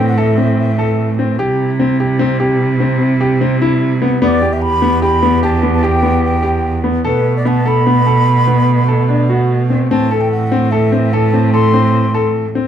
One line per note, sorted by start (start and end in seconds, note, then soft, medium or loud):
0.00 1.40 A2 medium
0.00 1.36 E3 medium
0.00 1.37 A3 medium
0.00 0.13 C4 medium
0.00 1.36 C4 medium
0.09 0.20 F#5 medium
0.18 0.33 A4 medium
0.18 0.58 E5 medium
0.38 0.68 C4 medium
0.59 1.15 E5 medium
0.79 1.09 A4 medium
1.19 1.34 C4 medium
1.38 4.23 C3 medium
1.38 4.19 C3 medium
1.38 4.19 G3 medium
1.38 4.18 E4 medium
1.38 1.69 G4 medium
1.80 1.95 C4 medium
2.00 2.15 G4 medium
2.19 2.35 C4 medium
2.40 2.70 G4 medium
2.80 3.11 C4 medium
3.21 3.36 G4 medium
3.41 3.56 C4 medium
3.62 3.92 E4 medium
4.02 4.17 B3 medium
4.20 7.06 E2 medium
4.20 6.86 E3 medium
4.20 9.86 B3 medium
4.20 4.37 B3 medium
4.20 6.86 G4 medium
4.20 4.55 D5 loud
4.42 4.72 G4 medium
4.53 4.63 E5 medium
4.62 5.02 B5 loud
4.82 4.97 B3 medium
5.02 5.17 G4 medium
5.02 5.40 B5 loud
5.23 5.38 B3 medium
5.43 5.58 G4 medium
5.43 5.71 A5 medium
5.63 5.78 B3 medium
5.74 5.86 A5 medium
5.83 5.98 G4 medium
5.83 6.24 G5 medium
6.03 6.33 B3 medium
6.25 6.81 G5 medium
6.43 6.73 G4 medium
6.84 6.99 B3 medium
7.03 9.92 B2 medium
7.03 9.87 D3 medium
7.03 12.68 A3 medium
7.03 7.35 A4 medium
7.03 7.34 B4 medium
7.37 7.49 D5 medium
7.45 7.61 B3 medium
7.45 7.69 A5 medium
7.66 7.81 A4 medium
7.66 9.51 B5 loud
7.87 8.02 B3 medium
8.06 8.37 A4 medium
8.48 8.78 B3 medium
8.88 9.04 A4 medium
9.09 9.24 D4 medium
9.29 9.60 F#4 medium
9.70 9.86 C4 medium
9.89 12.68 A2 medium
9.89 12.68 E3 medium
9.89 12.68 C4 medium
9.89 10.06 C4 medium
9.89 10.22 A5 medium
10.11 10.41 A4 medium
10.21 10.31 G5 medium
10.32 10.72 F#5 medium
10.52 10.67 C4 medium
10.71 10.87 A4 medium
10.71 11.15 E5 medium
10.92 11.08 C4 medium
11.13 11.28 A4 medium
11.13 11.53 A5 medium
11.34 11.49 C4 medium
11.53 11.69 A4 medium
11.53 12.30 C6 medium
11.74 12.04 C4 medium
12.14 12.45 A4 medium
12.55 12.68 C4 medium